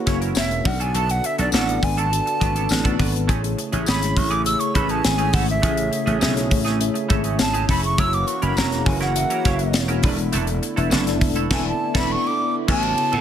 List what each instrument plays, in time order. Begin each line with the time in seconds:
Already playing: analog synth pad E3 A#3 F#4, tine electric piano A#3 C#4 E4 F#4 G#4 A#4 C#5
0.06 slap bass F#1, clean electric guitar F#3 C#4 E4 C#5, tine electric piano A#3 C#4 E4 F#4 C#5, kick, snare, closed hi-hat
0.21 clean electric guitar F#3 C#4 E4 A#4, closed hi-hat
0.35 slap bass E1, clean electric guitar F#3 C#4 E4 A#4, flute E5, snare, tambourine
0.50 tine electric piano A#3 C#4 E4 F#4 A#4, muted clean electric guitar stroke, closed hi-hat
0.65 slap bass B1, analog synth pad D3 B3 A4, tine electric piano B3 D4 F#4 D5, flute F#5, muted clean electric guitar stroke, kick, open hi-hat
0.80 clean electric guitar F#3 B3 D4 A4, flute G#5, closed hi-hat
0.94 slap bass B1, clean electric guitar F#3 B3 D4 A4, flute A5, closed hi-hat
1.09 flute F#5, muted clean electric guitar stroke, closed hi-hat
1.24 flute E5, muted clean electric guitar stroke, closed hi-hat
1.38 slap bass B1, clean electric guitar F#3 B3 D4 A4, tine electric piano B3 D4 F#4 A4 D5, flute D5, closed hi-hat
1.52 slap bass A1, clean electric guitar F#3 B3 D4 A4, flute F#5, snare, tambourine
1.67 tine electric piano B3 D4 F#4 A4 D5, muted clean electric guitar stroke, closed hi-hat
1.83 slap bass G#1, flute G#5, muted clean electric guitar stroke, kick, open hi-hat
1.97 clean electric guitar F#3 B3 D4 A4, flute A5, closed hi-hat
2.11 tine electric piano B3 D4 F#4 A4 D5, muted clean electric guitar stroke, closed hi-hat
2.26 muted clean electric guitar stroke, closed hi-hat
2.40 slap bass G#1, clean electric guitar F#3 B3 D4 B4, tine electric piano B3 D4 F#4 A4 D5, kick, closed hi-hat
2.55 clean electric guitar F#3 B3 D4 A4, closed hi-hat
2.69 slap bass A1, muted clean electric guitar stroke, snare, tambourine
2.84 clean electric guitar F#3 B3 D4 A4, tine electric piano B3 D4 F#4 A4 B4, kick, closed hi-hat
2.98 slap bass G#1, clean electric guitar F#3 B3 D4 B4, kick, open hi-hat
3.14 muted clean electric guitar stroke, closed hi-hat
3.27 slap bass A1, analog synth pad C#3 A3 G#4, clean electric guitar E3 A3 C#4 G#4, tine electric piano A3 C#4 E4 G#4 C#5, kick, closed hi-hat
3.42 muted clean electric guitar stroke, closed hi-hat
3.57 muted clean electric guitar stroke, closed hi-hat
3.71 slap bass A1, clean electric guitar E3 A3 C#4 G#4, tine electric piano A3 C#4 E4 G#4 C#5, closed hi-hat
3.86 slap bass G#1, clean electric guitar E3 A3 C#4 G#4, flute B5, snare, tambourine
4.01 tine electric piano A3 C#4 E4 G#4 C#5, muted clean electric guitar stroke, snare, closed hi-hat
4.16 slap bass A1, flute C#6, muted clean electric guitar stroke, kick, open hi-hat
4.30 clean electric guitar E3 A3 C#4 G#4, flute D6, closed hi-hat
4.45 tine electric piano A3 C#4 E4 G#4 C#5, flute E6, muted clean electric guitar stroke, closed hi-hat
4.60 flute C#6, muted clean electric guitar stroke, closed hi-hat
4.74 slap bass A1, clean electric guitar E3 A3 C#4 A4, tine electric piano A3 E4 G#4 B4, flute B5, kick, closed hi-hat
4.89 clean electric guitar E3 A3 C#4 G#4, flute A5, closed hi-hat
5.04 slap bass G#1, flute G#5, muted clean electric guitar stroke, snare, tambourine
5.18 clean electric guitar E3 A3 C#4 G#4, tine electric piano A3 C#4 E4 G#4 E5, closed hi-hat
5.33 slap bass G#1, clean electric guitar E3 A3 C#4 A4, flute F#5, kick, open hi-hat
5.48 flute E5, muted clean electric guitar stroke, closed hi-hat
5.62 slap bass A1, clean electric guitar E3 A3 C#4 G#4, tine electric piano A3 C#4 E4 G#4 C#5, kick, closed hi-hat
5.77 muted clean electric guitar stroke, closed hi-hat
5.91 muted clean electric guitar stroke, closed hi-hat
6.06 slap bass A1, clean electric guitar E3 A3 C#4 G#4, tine electric piano A3 C#4 E4 G#4 C#5, closed hi-hat
6.20 slap bass B1, clean electric guitar E3 A3 C#4 G#4, snare, tambourine
6.35 tine electric piano A3 C#4 E4 G#4 C#5, muted clean electric guitar stroke, snare, closed hi-hat
6.50 slap bass A1, muted clean electric guitar stroke, kick, open hi-hat
6.65 clean electric guitar E3 A3 C#4 G#4, snare, closed hi-hat
6.80 tine electric piano A3 C#4 E4 G#4 E5, muted clean electric guitar stroke, closed hi-hat
6.94 muted clean electric guitar stroke, closed hi-hat
7.08 slap bass G#1, clean electric guitar E3 A3 C#4 A4, tine electric piano A3 C#4 E4 G#4 E5, kick, closed hi-hat
7.24 clean electric guitar E3 A3 C#4 G#4, closed hi-hat
7.39 slap bass G#1, flute A5, muted clean electric guitar stroke, snare, tambourine
7.53 clean electric guitar E3 A3 C#4 G#4, tine electric piano A3 C#4 E4 G#4 E5, closed hi-hat
7.68 slap bass F1, clean electric guitar E3 A3 C#4 A4, flute B5, kick, open hi-hat
7.83 flute C#6, muted clean electric guitar stroke, closed hi-hat
7.97 slap bass F#1, analog synth pad E3 A#3 F#4, clean electric guitar F#3 C#4 E4 A#4, tine electric piano A#3 C#4 E4 F#4 C#5, flute E6, kick, closed hi-hat
8.13 flute D6, muted clean electric guitar stroke, closed hi-hat
8.27 flute C#6, muted clean electric guitar stroke, closed hi-hat
8.42 slap bass F#1, clean electric guitar F#3 C#4 E4 A#4, tine electric piano A#3 C#4 E4 F#4 C#5, flute B5, closed hi-hat
8.56 slap bass E1, clean electric guitar F#3 C#4 E4 A#4, flute A#5, snare, tambourine
8.71 tine electric piano A#3 C#4 E4 F#4 G#4, muted clean electric guitar stroke, snare, closed hi-hat
8.86 slap bass F#1, flute G#5, muted clean electric guitar stroke, kick, open hi-hat
9.00 clean electric guitar F#3 C#4 E4 A#4, flute F#5, snare, closed hi-hat
9.15 tine electric piano A#3 C#4 E4 F#4 E5, muted clean electric guitar stroke, closed hi-hat
9.30 clean electric guitar F#3 C#4 E4 A#4, closed hi-hat
9.45 slap bass F#1, clean electric guitar F#3 C#4 E4 C#5, tine electric piano A#3 C#4 E4 F#4 C#5, kick, snare, closed hi-hat
9.59 muted clean electric guitar stroke, closed hi-hat
9.73 slap bass E1, muted clean electric guitar stroke, snare, tambourine
9.88 clean electric guitar F#3 C#4 E4 A#4, tine electric piano A#3 C#4 E4 F#4 G#4, closed hi-hat
10.03 slap bass E1, analog synth pad D3 A3 E4, clean electric guitar A3 D4 E4 B4, tine electric piano B3 D4 E4 G#4 D5, kick, open hi-hat
10.18 muted clean electric guitar stroke, closed hi-hat
10.32 slap bass E1, clean electric guitar A3 D4 E4 A4, closed hi-hat
10.47 muted clean electric guitar stroke, closed hi-hat
10.62 muted clean electric guitar stroke, closed hi-hat
10.76 slap bass E1, clean electric guitar A3 D4 E4 A4, tine electric piano B3 D4 E4 A4 E5, closed hi-hat
10.91 slap bass F#1, clean electric guitar A3 D4 E4 A4, snare, tambourine
11.06 tine electric piano B3 D4 E4 A4 D5, muted clean electric guitar stroke, snare, closed hi-hat
11.20 slap bass E1, muted clean electric guitar stroke, kick, open hi-hat
11.36 clean electric guitar A3 D4 E4 A4, closed hi-hat
11.50 slap bass E1, clean electric guitar A3 D4 E4 A4, tine electric piano B3 D4 E4 A4 D5, flute G#5, kick, snare, crash
11.68 flute A5
11.94 slap bass E1, clean electric guitar A3 D4 E4 A4, tine electric piano B3 D4 E4 A4 D5, flute B5, kick, snare, crash
12.12 flute C#6
12.27 flute D6
12.68 slap bass A1, analog synth pad C#3 B3 F#4, clean electric guitar F#3 B3 C#4 A4, tine electric piano B3 E4 F#4 A4 C#5, flute A5, kick, crash
12.83 muted clean electric guitar stroke, ride
12.98 muted clean electric guitar stroke, ride
13.12 slap bass A2, clean electric guitar F#3 B3 C#4 A4, ride